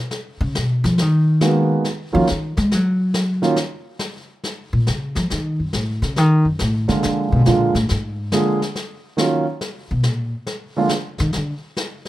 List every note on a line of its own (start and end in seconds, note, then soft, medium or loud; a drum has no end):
0.11 brush sweep medium
0.11 snare medium
0.41 0.54 C#3 loud
0.55 0.83 B2 medium
0.55 snare medium
0.84 1.02 F3 loud
0.84 snare soft
0.98 1.72 D#3 medium
0.98 brush sweep medium
0.98 snare medium
1.41 1.84 D#3 medium
1.41 1.84 G#3 medium
1.41 1.84 A#3 medium
1.41 1.85 B3 soft
1.41 1.85 F#4 medium
1.41 snare medium
1.84 brush sweep medium
1.84 snare soft
2.12 2.26 D#3 medium
2.12 2.28 F3 loud
2.12 2.26 F#3 medium
2.12 2.26 A#3 medium
2.12 2.26 C#4 medium
2.12 2.26 F4 medium
2.27 2.57 D#3 medium
2.27 snare medium
2.57 2.74 G#3 loud
2.57 snare soft
2.71 3.44 F#3 medium
2.71 brush sweep medium
2.71 snare medium
3.14 snare medium
3.42 3.55 D#3 medium
3.42 3.55 F#3 soft
3.42 3.55 A#3 medium
3.42 3.55 C#4 medium
3.42 3.56 F4 medium
3.42 snare soft
3.56 brush sweep medium
3.56 snare medium
3.99 snare medium
4.44 brush sweep medium
4.44 snare soft
4.73 4.86 A#2 medium
4.87 5.16 C#3 medium
4.87 snare medium
5.15 5.30 F3 loud
5.15 snare soft
5.30 5.59 D#3 medium
5.30 brush sweep soft
5.30 snare medium
5.60 5.73 F#2 medium
5.73 6.01 A2 medium
5.73 snare medium
6.02 6.18 C#3 medium
6.02 snare soft
6.16 6.44 D#3 loud
6.16 brush sweep medium
6.16 snare soft
6.45 6.59 F#2 medium
6.59 6.88 A2 medium
6.59 snare medium
6.88 7.02 C#3 medium
6.88 7.42 D3 medium
6.88 7.43 F3 soft
6.88 7.43 G#3 soft
6.88 7.43 A#3 soft
6.88 7.43 F4 medium
6.88 snare soft
7.03 7.32 D3 loud
7.03 brush sweep medium
7.03 snare soft
7.32 7.46 B2 medium
7.46 7.74 A#2 medium
7.46 7.72 D3 medium
7.46 7.72 F3 soft
7.46 7.72 G#3 soft
7.46 7.72 A#3 medium
7.46 7.72 F4 medium
7.46 snare medium
7.75 7.88 A2 medium
7.75 snare soft
7.89 8.30 G#2 medium
7.89 brush sweep medium
7.89 snare medium
8.32 8.58 D3 medium
8.32 8.58 F3 soft
8.32 8.58 G#3 soft
8.32 8.59 A#3 soft
8.32 8.59 G#4 medium
8.32 snare medium
8.62 snare soft
8.75 brush sweep medium
8.75 snare medium
9.17 9.43 D#3 medium
9.17 9.44 F#3 medium
9.17 9.44 A#3 soft
9.17 9.44 C#4 soft
9.17 9.44 F4 medium
9.17 snare medium
9.61 brush sweep medium
9.61 snare medium
9.91 10.07 B2 medium
10.03 10.34 A#2 medium
10.03 snare medium
10.47 brush sweep medium
10.47 snare medium
10.77 10.89 D3 medium
10.77 10.89 F3 medium
10.77 10.90 G#3 medium
10.77 10.90 A#3 medium
10.77 10.90 F4 medium
10.89 snare medium
11.18 11.33 D#3 loud
11.18 snare soft
11.33 11.52 D3 loud
11.33 brush sweep medium
11.33 snare medium
11.77 snare medium
12.05 snare soft